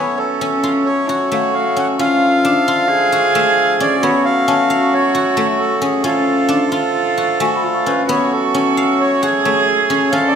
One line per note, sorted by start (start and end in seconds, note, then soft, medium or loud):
0.00 1.98 F#3 medium
0.00 10.35 A3 medium
0.00 3.06 B3 medium
0.00 0.41 C#4 medium
0.00 1.11 C#4 medium
0.00 1.98 C#4 medium
0.00 0.70 E4 medium
0.00 0.70 F#4 medium
0.00 0.18 C#5 medium
0.00 0.69 G#5 medium
0.17 0.88 A4 medium
0.41 1.76 C#4 medium
0.64 1.15 F4 medium
0.86 1.30 C#5 medium
1.09 2.74 F#4 medium
1.09 2.00 F#4 medium
1.31 3.35 A3 medium
1.31 1.55 C#5 medium
1.31 2.06 F5 medium
1.54 1.77 F5 medium
1.77 1.99 C#4 medium
1.77 1.88 F#5 medium
1.99 4.00 D3 medium
1.99 4.00 F3 medium
1.99 2.51 C#4 medium
1.99 2.65 F4 medium
1.99 3.77 F5 loud
2.45 3.86 D4 medium
2.65 2.89 F4 medium
2.65 3.18 F4 medium
2.88 4.01 G#4 loud
3.12 4.76 F#4 medium
3.35 5.36 A3 medium
3.80 4.47 C#4 medium
3.80 4.03 D5 medium
4.02 6.02 F#3 medium
4.02 7.14 B3 medium
4.02 6.01 C#4 medium
4.02 6.06 F#4 medium
4.02 4.25 C#5 loud
4.25 4.94 F5 loud
4.48 5.81 C#4 medium
4.48 5.20 A5 medium
4.70 5.21 F5 medium
4.94 5.36 C#5 medium
5.15 6.78 F#4 medium
5.37 7.40 A3 medium
5.37 5.48 C#5 medium
5.60 5.82 A4 medium
5.82 6.04 C#4 medium
5.82 6.03 G#4 medium
6.04 8.07 D3 medium
6.04 8.06 F3 medium
6.04 6.55 C#4 medium
6.04 6.71 F4 medium
6.04 7.92 A4 medium
6.49 7.92 D4 medium
6.72 7.24 F4 medium
6.72 7.42 F4 medium
7.18 8.83 F#4 medium
7.40 9.45 A3 medium
7.40 7.65 F#4 medium
7.40 8.14 G#5 medium
7.56 8.28 B5 soft
7.63 8.09 F4 medium
7.74 8.42 C#6 soft
7.86 8.54 C#4 medium
7.86 8.10 B4 medium
8.08 10.11 F#3 medium
8.08 10.35 B3 medium
8.08 10.11 C#4 medium
8.08 9.24 F#4 medium
8.08 8.32 C#5 medium
8.32 9.02 A4 medium
8.54 9.90 C#4 medium
8.77 9.29 F5 medium
9.00 9.42 C#5 medium
9.22 10.35 F#4 medium
9.22 10.14 G#4 loud
9.45 10.35 A3 medium
9.45 9.66 C#5 medium
9.89 10.12 C#4 medium
9.89 10.13 C#5 medium
10.12 10.35 D3 medium
10.12 10.35 F3 medium
10.12 10.35 C#4 medium
10.12 10.35 A4 loud
10.12 10.28 F5 loud
10.28 10.35 D5 medium